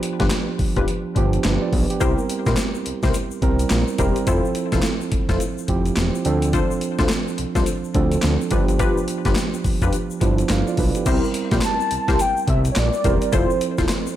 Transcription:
Already playing: F3 B3 D4 G4
0.03 closed hi-hat
0.20 G1 D4 F4 G4 B4, kick, snare, closed hi-hat
0.30 snare, clap, closed hi-hat
0.59 F1, kick, open hi-hat
0.76 F1 D4 F4 G4 B4, kick, closed hi-hat
0.88 closed hi-hat
1.16 G1 F3 B3 D4 G4, kick, closed hi-hat
1.33 closed hi-hat
1.44 G1 D4 B4, snare, clap, closed hi-hat
1.62 F4 D5
1.73 B1, kick, open hi-hat
1.90 B3 G4, closed hi-hat
2.00 C2 G3 C4 E4 G4 A#4 C5, kick, closed hi-hat, shaker
2.18 shaker
2.30 closed hi-hat, shaker
2.46 A#1 E4 G4 A#4 C5, kick, snare, closed hi-hat, shaker
2.57 snare, clap, closed hi-hat, shaker
2.74 shaker
2.86 C2, closed hi-hat
3.03 C2 E4 G4 A#4 C5, kick, snare, closed hi-hat, shaker
3.14 closed hi-hat, shaker
3.31 shaker
3.42 C2 G3 C4 E4 A#4, kick, closed hi-hat
3.59 closed hi-hat, shaker
3.70 A#1, snare, clap, closed hi-hat, shaker
3.88 shaker
3.98 E1 G3 C4 E4 G4 A#4 C5, kick, closed hi-hat, shaker
4.16 closed hi-hat, shaker
4.27 F1 F3 C4 E4 F4 A4 C5, kick, closed hi-hat, shaker
4.45 shaker
4.55 closed hi-hat, shaker
4.72 E1 E4 F4 A4 C5, kick, snare, closed hi-hat, shaker
4.82 snare, clap, closed hi-hat, shaker
5.01 shaker
5.12 F1, kick, closed hi-hat
5.29 F1 E4 F4 A4 C5, kick, snare, closed hi-hat, shaker
5.40 closed hi-hat, shaker
5.58 shaker
5.68 F1 F3 C4 E4 G4, kick, closed hi-hat
5.86 closed hi-hat, shaker
5.96 E1, snare, clap, closed hi-hat, shaker
6.15 shaker
6.25 D2 F3 C4 D4 A4, closed hi-hat, shaker
6.42 closed hi-hat, shaker
6.53 D4 F4 A4 C5, kick, closed hi-hat, shaker
6.71 shaker
6.81 closed hi-hat, shaker
6.99 D2 D4 F4 A4 C5, kick, snare, closed hi-hat, shaker
7.09 snare, clap, closed hi-hat, shaker
7.28 shaker
7.38 C2, closed hi-hat
7.55 C2 D4 F4 A4 C5, kick, snare, closed hi-hat, shaker
7.66 closed hi-hat, shaker
7.84 shaker
7.94 D2 F3 C4 D4 A4, kick, closed hi-hat
8.12 closed hi-hat, shaker
8.22 D2, snare, clap, closed hi-hat, shaker
8.41 shaker
8.51 G1 F3 B3 D4 F4 G4 B4, kick, closed hi-hat, shaker
8.68 closed hi-hat, shaker
8.79 D4 F4 G4 B4, kick, closed hi-hat, shaker
8.98 shaker
9.08 closed hi-hat, shaker
9.25 G1 D4 F4 G4 B4, kick, snare, closed hi-hat, shaker
9.35 snare, clap, closed hi-hat, shaker
9.54 shaker
9.64 F1, kick, open hi-hat, shaker
9.82 F1 D4 F4 G4 B4, kick, closed hi-hat, shaker
9.93 closed hi-hat, shaker
10.11 shaker
10.21 G1 F3 B3 D4 E4, kick, closed hi-hat, shaker
10.38 closed hi-hat, shaker
10.49 G1 A4 F5, snare, clap, closed hi-hat, shaker
10.67 F4 D5, shaker
10.77 B1 D4 B4, kick, open hi-hat, shaker
10.95 B3 G4, closed hi-hat, shaker
11.06 C2 G3 C4 E4 G4 A#4 C5, kick, closed hi-hat, crash, shaker
11.24 shaker
11.34 closed hi-hat, shaker
11.51 A#1 E4 G4 A#4 C5, kick, snare, closed hi-hat, shaker
11.61 A5, snare, clap, closed hi-hat, shaker
11.80 shaker
11.91 C2, closed hi-hat, shaker
12.08 C2 E4 G4 A#4 C5, kick, snare, closed hi-hat, shaker
12.19 G5, closed hi-hat, shaker
12.37 shaker
12.48 C2 E5, kick, closed hi-hat
12.65 closed hi-hat, shaker
12.72 C#5, clap
12.76 A#1 D5, snare, closed hi-hat, shaker
12.93 shaker
13.04 E1 G3 C4 E4 G4 A#4 C5, kick, closed hi-hat, shaker
13.22 closed hi-hat, shaker
13.32 F1 F3 C4 E4 F4 A4 C5, kick, closed hi-hat, shaker
13.50 shaker
13.61 closed hi-hat, shaker
13.78 E1 E4 F4 A4 C5, kick, snare, closed hi-hat, shaker
13.89 snare, clap, closed hi-hat, shaker
14.07 shaker

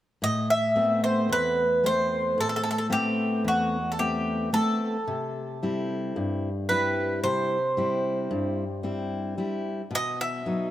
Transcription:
0.22 A2 D#5
0.50 E5
0.76 A3 B3 C4
1.04 C5
1.29 E2 B4
1.84 A3 C4 C5
2.38 A2 A4
2.49 A4
2.56 A4
2.63 A4
2.71 A4
2.78 A4
2.90 A3 B3 C4 G4
3.44 E2 F#4
3.92 A4
3.99 A3 B3 C4 G4
4.53 A3 B3 C4 A4
5.07 C3
5.63 G3 C4 E4
6.16 G2
6.69 G3 C4 E4 B4
7.23 C3 C5
7.77 G3 C4 E4
8.31 G2
8.83 G3 C4 E4
9.38 G3 C4 E4
9.91 B2
9.95 D#5
10.21 E5
10.46 F#3 B3 D#4

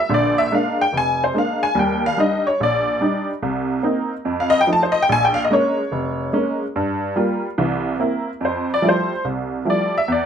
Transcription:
0.00 E5
0.09 A#1 D3
0.14 D5
0.38 E5
0.52 G#3 A#3 D4 F5
0.81 G5
0.93 F1
0.97 G#5
1.24 C5
1.34 G#3 A#3 D4 F5
1.63 G#5
1.75 D#2 G3
1.79 G5
2.06 F5
2.17 G3 D4 D#4 D#5
2.47 C#5
2.60 A#1 D5
3.01 G3 D4 D#4
3.42 C2 C3
3.83 A#3 C4 D#4
4.25 F2
4.40 F5
4.50 D#5
4.61 G5
4.67 F3 A3 D#4
4.73 A5
4.83 C5
4.92 D#5
5.02 G5
5.09 A#1 G#5
5.25 G5
5.34 F5
5.45 D#5
5.50 G#3 A#3 C#4 C#5
5.92 F1
6.33 G#3 A#3 C#4
6.76 G2
7.16 G3 A#3 F4
7.58 C2 E3
7.99 A#3 C4 E4
8.41 F2
8.45 C5
8.74 D5
8.82 F3 G3 A3 E4
8.89 C5
9.25 C2
9.65 F3 G3 A3 E4
9.70 D5
9.98 E5
10.08 E2
10.12 D5

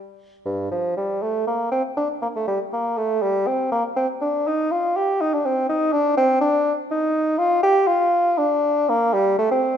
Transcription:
0.45 G2
0.72 F3
0.97 G3
1.22 A3
1.47 A#3
1.72 C4
1.97 D4
2.22 A#3
2.36 A3
2.48 G3
2.73 A#3
2.98 A3
3.22 G3
3.47 C4
3.72 A#3
3.96 C4
4.21 D4
4.47 D#4
4.71 F4
4.96 G4
5.21 D#4
5.34 D4
5.45 C4
5.69 D#4
5.93 D4
6.17 C4
6.41 D4
6.91 D#4
7.38 F4
7.63 G4
7.87 F4
8.38 D4
8.89 A#3
9.14 G3
9.39 A3
9.51 C4

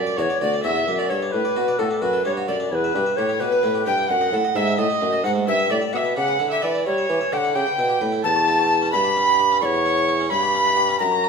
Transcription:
Already playing: F#2 D5
0.07 D5
0.17 E2 F#4 C#5 D5
0.22 C#5
0.30 D5
0.41 D2 F#4 D5
0.53 D4
0.63 E2 F#4 E5
0.76 A4
0.87 F#2 D4
0.98 F#4 D5
1.10 G2 A4 C#5
1.22 D4
1.32 A2 B4
1.45 D5
1.56 B2 F#4
1.68 D5
1.79 A2 F#4 A4
1.91 D4
2.02 F#2 F#4 B4
2.13 A4
2.25 G2 D4 C#5
2.37 F#4
2.48 F#2 A4 D5
2.60 D4
2.71 E2 B4 C#5
2.75 B4
2.84 E5
2.94 G2 G4
3.06 E5
3.17 A2 G4 C#5
3.29 E4
3.40 B2 G4 B4
3.52 B4
3.63 A2 E4
3.75 G4
3.86 G2 B4 G5
3.98 E4
4.08 F#2 F#5
4.21 D#5
4.32 A2 A4
4.44 D#5
4.55 G#2 A4 E5
4.67 D#4
4.78 A2 A4 D#5
4.90 D#4
5.01 F#2 A3
5.13 A4
5.24 G#2 D#4 F#5
5.35 A3
5.47 G2 E5
5.59 E5
5.70 A2 G4 D5
5.81 E5
5.93 B2 G4 E5 F#5
5.98 E5
6.05 E4
6.17 C#3 G4 F#5
6.28 B4
6.39 D3 E4
6.50 G4 E5
6.62 E3 B4 D5
6.75 E4
6.86 G3 C#5
6.98 E5
7.09 E3 G4
7.21 E5
7.32 D3 G4 F#5 G5
7.37 F#5
7.44 E4
7.55 C#3 G4 G5
7.67 B4
7.78 B2 E4
7.89 G4
8.01 A2 B4
8.12 E4
8.24 E2 A5
8.36 C#5
8.48 E4
8.59 C#5
8.71 E4
8.82 C#4
8.91 G2 E4 B5
9.04 G4
9.17 C#4
9.28 E4
9.39 G4
9.52 C#4
9.61 E2 C#5 D5 C#6
9.75 C#5
9.86 E4
9.98 C#5
10.08 E4
10.20 C#4
10.30 G2 E4 B5
10.43 G4
10.54 C#4
10.66 E4
10.77 G4
10.89 C#4
11.00 F#2 A#5
11.12 C#5
11.24 F#4

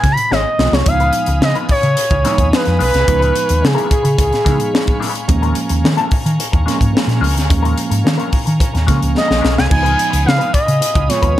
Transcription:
Already playing: G#5
0.04 C#3, muted clean electric guitar stroke, kick, snare, closed hi-hat
0.12 B5
0.17 muted clean electric guitar stroke, closed hi-hat
0.31 G#1 G#3 D#4 F4 C#5 D#5, snare
0.59 B1 F3 G#3 B3 F4, muted clean electric guitar stroke, snare
0.72 C2 G#3 D#4 F4 C#5, snare
0.86 C#2 F3 G#3 B3 D#4 F5 G#5 B5 D#6, muted clean electric guitar stroke, kick, closed hi-hat
1.00 G#3 D#4 F4 B4, closed hi-hat
1.13 closed hi-hat
1.26 C#2, muted clean electric guitar stroke, closed hi-hat
1.41 C#3 D#5, muted clean electric guitar stroke, snare
1.55 G#3 D#4 F4 B4, closed hi-hat
1.69 C#5, muted clean electric guitar stroke, muted fingered electric bass stroke, kick, open hi-hat
1.83 C#3, muted clean electric guitar stroke, closed hi-hat
1.97 muted clean electric guitar stroke, closed hi-hat
2.10 C#2, muted clean electric guitar stroke, kick, closed hi-hat
2.24 F3 G#3 B3 D#4 F4 B4, snare, closed hi-hat
2.38 D#2, muted clean electric guitar stroke, kick, closed hi-hat
2.52 B4, muted clean electric guitar stroke, snare
2.65 F2, muted clean electric guitar stroke, snare, closed hi-hat
2.79 B1 G#3 D#4 F4 B4, open hi-hat
2.93 C2, muted clean electric guitar stroke, snare, closed hi-hat
3.06 C#2 F3 G#3 B3 D#4 C#6, muted clean electric guitar stroke, kick, closed hi-hat
3.20 G#3 D#4 F4 B4, closed hi-hat
3.34 muted clean electric guitar stroke, closed hi-hat
3.47 D#2, muted clean electric guitar stroke, closed hi-hat
3.61 C#3 G#4, muted clean electric guitar stroke, snare
3.75 G#3 D#4 F4 B4, closed hi-hat
3.89 G#4, muted clean electric guitar stroke, muted fingered electric bass stroke, kick, closed hi-hat
4.03 C#3, muted clean electric guitar stroke, closed hi-hat
4.17 C#2 G#4, muted clean electric guitar stroke, kick, closed hi-hat
4.31 muted clean electric guitar stroke, snare, closed hi-hat
4.44 C#3 F3 G#3 B3 D#4 F4 B4, kick, snare, closed hi-hat
4.59 muted clean electric guitar stroke, closed hi-hat
4.73 muted clean electric guitar stroke, snare
4.86 muted clean electric guitar stroke, kick, closed hi-hat
5.00 G#3 D#4 F4 B4, snare, open hi-hat
5.14 muted clean electric guitar stroke, closed hi-hat
5.28 D#2 F3 G#3 A#3 C#4 G#5 A#5, muted clean electric guitar stroke, kick, closed hi-hat
5.42 G#3 C#4 F4 A#4, closed hi-hat
5.55 muted clean electric guitar stroke, closed hi-hat
5.69 D#2, muted clean electric guitar stroke, closed hi-hat
5.84 D#3, muted clean electric guitar stroke, snare
5.97 G#3 C#4 F4 A#4, closed hi-hat
6.11 muted clean electric guitar stroke, muted fingered electric bass stroke, kick, open hi-hat
6.26 D#3, muted clean electric guitar stroke, closed hi-hat
6.39 muted clean electric guitar stroke, closed hi-hat
6.52 D#2, muted clean electric guitar stroke, kick, closed hi-hat
6.66 F3 G#3 A#3 C#4 F4 A#4, snare, closed hi-hat
6.80 G#2, muted clean electric guitar stroke, kick, closed hi-hat
6.93 muted clean electric guitar stroke, snare
7.07 A#2, muted clean electric guitar stroke, snare, closed hi-hat
7.21 C#2 G#3 C#4 F4 A#4, open hi-hat
7.36 D2, muted clean electric guitar stroke, snare, closed hi-hat
7.49 D#2 F3 G#3 A#3 C#4, muted clean electric guitar stroke, kick, closed hi-hat
7.63 G#3 C#4 F4 A#4, closed hi-hat
7.77 muted clean electric guitar stroke, closed hi-hat
7.90 G#2, muted clean electric guitar stroke, closed hi-hat
8.04 D#3, muted clean electric guitar stroke, snare
8.18 G#3 C#4 F4 A#4, closed hi-hat
8.32 muted clean electric guitar stroke, muted fingered electric bass stroke, kick, open hi-hat
8.46 D#3, muted clean electric guitar stroke, closed hi-hat
8.60 muted clean electric guitar stroke, kick, closed hi-hat
8.74 D#2, muted clean electric guitar stroke, snare, closed hi-hat
8.87 C#3 F3 G#3 A#3 C#4 F4 A#4, kick, snare, closed hi-hat
9.01 C#2, muted clean electric guitar stroke, closed hi-hat
9.14 D#5, muted clean electric guitar stroke, snare
9.28 A#1, muted clean electric guitar stroke, snare
9.41 B1 G#3 C#4 F4 A#4, snare
9.56 C2 G#5, muted clean electric guitar stroke, snare
9.69 C#2 F3 G#3 B3 D#4 G#5 B5 D#6, muted clean electric guitar stroke, kick, crash
9.83 G#3 D#4 F4 B4, closed hi-hat
9.97 muted clean electric guitar stroke, closed hi-hat
10.10 C#2, muted clean electric guitar stroke, closed hi-hat
10.25 C#3 F5, muted clean electric guitar stroke, snare
10.38 G#3 D#4 F4 B4, closed hi-hat
10.52 D#5, muted clean electric guitar stroke, muted fingered electric bass stroke, kick, closed hi-hat
10.66 C#3, muted clean electric guitar stroke, closed hi-hat
10.81 muted clean electric guitar stroke, closed hi-hat
10.94 C#2, muted clean electric guitar stroke, kick, closed hi-hat
11.09 F3 G#3 B3 F4 C#5, snare, closed hi-hat
11.22 D#2 G#3 D#4 F4 B4, kick, closed hi-hat
11.36 muted clean electric guitar stroke

